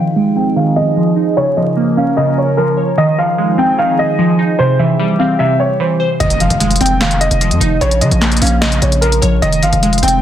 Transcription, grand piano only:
Already playing: F5
0.36 G5
0.56 F5
0.76 D#5
1.37 C#5
1.57 D#5
1.97 F5
2.17 D#5
2.38 C#5
2.57 A#4
2.98 D#5
3.18 F5
3.59 G5
3.78 F5
3.99 D#5
4.59 C5
4.79 E5
5.19 F5
5.39 E5
5.60 C#5
5.80 C5
6.20 D#5
6.40 F5
6.81 G5
7.01 F5
7.21 D#5
7.81 C#5
8.01 D#5
8.41 F5
8.61 D#5
8.82 C#5
9.01 A#4
9.42 D#5
9.63 F5
10.03 G5

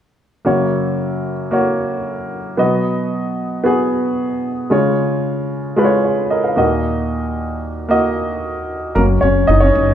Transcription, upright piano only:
0.45 F#2 C#3 A#3 F#4 C#5
1.51 A#3 F#4 C#5
2.57 B2 F#3 B3 F#4 D#5
3.64 B3 F#4 G#4
4.70 C#3 G#3 F4 C#5
5.76 G#3 F4 B4
5.85 C#5
6.04 G#4 C#5
6.30 A#4 D#5
6.44 B4 F5
6.56 D#2 A#2 A#3 F#4 D#5
7.89 A#3 F#4 D#5
8.95 F#3 A#3 C#4 A#4
9.21 C#4 C#5
9.47 D#4 D#5
9.60 C#4 C#5

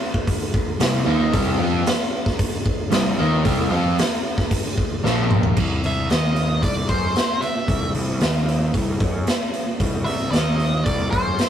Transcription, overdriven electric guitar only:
0.80 C3 G3
1.06 D#3 A#3 D#4
1.33 C3 G3 C4
1.59 F3 C4 F4
2.91 C3 G3
3.19 D#3 A#3 D#4
3.44 C3 G3 C4
3.70 F3 C4 F4
5.04 A#2 F3 A#3

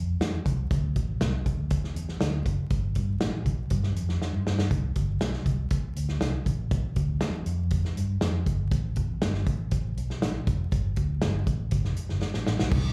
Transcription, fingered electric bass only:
Already playing: F2
0.20 E2
0.45 C2
0.71 D2
0.96 A1
1.20 C2
1.46 D2
1.96 E2
2.21 D2
2.45 F#1
2.70 G1
2.96 G2
3.20 A1
3.46 B1
3.71 G2
3.96 F2
4.21 muted fingered electric bass stroke
4.33 G2
4.46 G2
4.71 C2
4.96 G1
5.21 B1
5.46 C2
5.83 muted fingered electric bass stroke
5.96 D2
6.20 C2
6.46 A1
6.71 B1
6.97 D2
7.21 E2
7.46 F2
7.96 G2
8.22 F2
8.46 G1
8.71 A1
8.96 E2
9.23 G1
9.47 A1
9.97 B1
10.23 A1
10.47 F1
10.72 G1
10.97 D2
11.23 G1
11.47 A1
11.72 G1
11.85 F1
12.11 G1
12.35 A1
12.48 A1
12.60 B1
12.72 C2

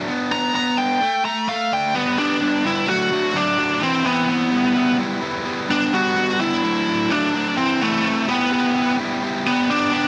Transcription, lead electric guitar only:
0.32 A#5
0.55 A#5
0.78 G5
1.25 A#5
1.49 F5
1.73 G5
1.95 B3
2.19 D4
2.66 E4
2.89 F#4
3.36 D4
3.83 C4
4.07 B3
5.71 D4
5.94 F#4
6.41 E4
7.11 D4
7.58 C4
7.81 A3
8.29 B3
9.47 B3
9.71 D4

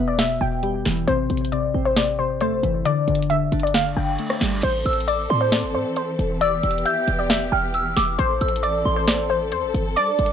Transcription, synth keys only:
Already playing: B2 B3
0.19 B2
0.42 B2
0.63 G3
0.86 E3
1.08 C3
1.31 C3
1.53 C3
1.74 C4
1.97 C3
2.19 C3
2.42 A3
2.63 E3
2.85 D3
3.08 D3
3.31 D3
3.53 D4
3.75 D3
3.96 D3
4.19 A3
4.41 G3

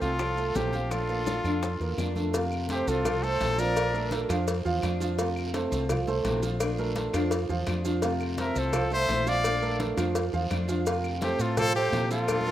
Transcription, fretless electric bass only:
0.02 C2
0.55 A#1
1.44 F2
1.80 E2
1.98 F2
2.87 C2
3.41 A#1
4.30 F2
4.65 E2
4.83 F2
5.72 C2
6.25 A#1
7.14 F2
7.49 E2
7.67 F2
8.56 C2
9.09 A#1
9.97 F2
10.33 E2
10.51 F2
11.39 A2
11.92 A#2

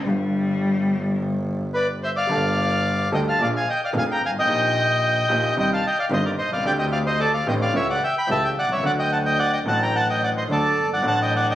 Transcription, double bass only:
0.06 G1
2.29 G1
3.12 D2
3.39 A#1
3.94 F1
4.20 G#1
4.47 A#1
5.30 A#1
5.56 C2
6.10 G1
6.37 C2
6.64 D2
7.46 A1
7.72 C#2
8.27 C#2
8.55 C2
8.82 D2
9.66 A1
10.48 D2
10.77 G1
11.05 A1

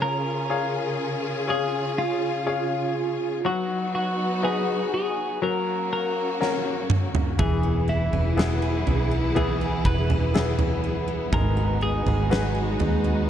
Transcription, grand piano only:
Already playing: C#4
0.50 G#4 C#5 F5
1.47 G#4 C#5 F5
2.47 G#4 C#5 F5
3.45 F#3
4.43 D#4 F#4 B4
5.42 F#3
6.40 C#4 F#4 A#4
7.39 E3
8.37 B3 E4 G#4
9.35 B3 E4 G#4
10.34 B3 E4 G#4
11.32 G#3
12.30 F#4 G#4 B4

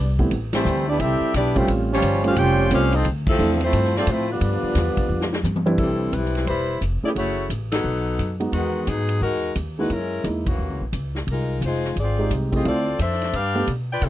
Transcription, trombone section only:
Already playing: D4
0.53 E3 G3 C4
0.88 D4
0.99 G3 C4 E4
1.35 D4
1.56 E3 G3 C4
1.90 F3 G3 C#4
2.24 G3 C#4 F4
2.35 G3 C#4 G4
2.70 G3 C#4 F4
2.94 D#4
3.26 C3 F3 A3
3.61 F3 A3 C4
3.95 F3 A3 D4
4.08 F3 A3 C4
4.28 D3 F3 B3

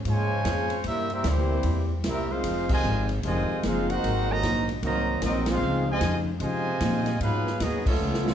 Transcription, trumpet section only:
0.09 F4 C5 C#5 G#5
0.87 C4 G4 A#4 E5
1.13 C4 G4 A#4 E5
1.28 A#3 E4 G4 C5
2.07 C4 G4 A#4 E5
2.31 D#4 G#4 C5 F5
2.72 F4 C5 D#5 G#5
3.25 F4 C5 D#5 G#5
3.66 D#4 G#4 C5 F5
3.90 D#4 A#4 C5 F#5
4.32 F#4 C5 D#5 A#5
4.84 F#4 C5 D#5 A#5
5.24 C4 F#4 A#4 D#5
5.50 D#4 G#4 C5 F5
5.90 F4 C5 D#5 G#5
6.41 F4 C5 D#5 G#5
7.21 D#4 G#4 B4 F5
7.61 B3 F#4 G#4 D#5
7.87 B3 F4 A4 C#5

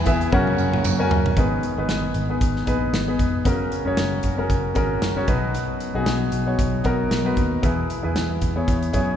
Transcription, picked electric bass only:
0.06 E2
0.32 F#2
0.58 F#2
0.84 F#2
1.10 F#2
1.37 G#1
1.77 G#1
1.88 G#1
2.15 G#1
2.41 G#1
2.67 A#1
2.93 G#1
3.19 F1
3.45 F#1
3.86 F#1
3.97 F#1
4.24 F#1
4.50 F#1
4.76 G#1
5.01 F#1
5.28 B1
5.95 B1
6.06 B1
6.33 B1
6.59 B1
6.85 B1
7.11 B1
7.37 D#2
7.63 E2
8.04 E2
8.15 E2
8.42 E2
8.68 E2
8.94 F#2

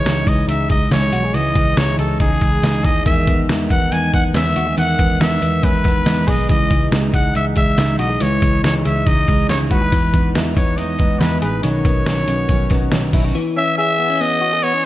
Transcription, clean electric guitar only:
Already playing: E3 G#3 G#4
0.05 D#4
0.27 G#3
0.48 D#4
0.69 G#3
0.91 C#4
1.02 D#4
1.13 F#4
1.24 G#4
1.34 E3
1.56 G#3
1.77 D#4
1.99 G#3
2.20 D#4
2.42 G#3
2.63 D#4
2.85 G#4
3.06 D#3
3.28 B3
3.49 D#4
3.71 B3
3.92 D#4
4.14 B3
4.35 C#4
4.56 F#4
4.67 G#4
4.77 D#3
4.99 B3
5.41 B3
5.63 C#4
5.73 D#4
5.84 B3
6.06 D#4
6.27 G#4
6.49 E3
6.70 G#3
6.92 D#4
7.13 G#3
7.35 D#4
7.56 G#3
7.78 D#4
7.99 F#4
8.10 G#4
8.21 E3
8.42 G#3
8.63 D#4
8.85 G#3
9.07 D#4
9.28 G#3
9.49 D#4
9.71 F#4
9.82 G#4
9.92 E3
10.13 B3
10.35 D#4
10.56 B3
10.78 D#4
10.99 B3
11.21 D#4
11.42 G#4
11.63 D#3
11.85 B3
12.06 C#4
12.28 B3
12.50 C#4
12.71 B3
12.92 C#4
13.14 E4
13.24 F#4
13.35 E3
13.57 C#4
13.78 G#4
13.99 B3
14.10 C#4
14.21 B3
14.41 F#4
14.53 G#4
14.63 B3
14.73 C#4

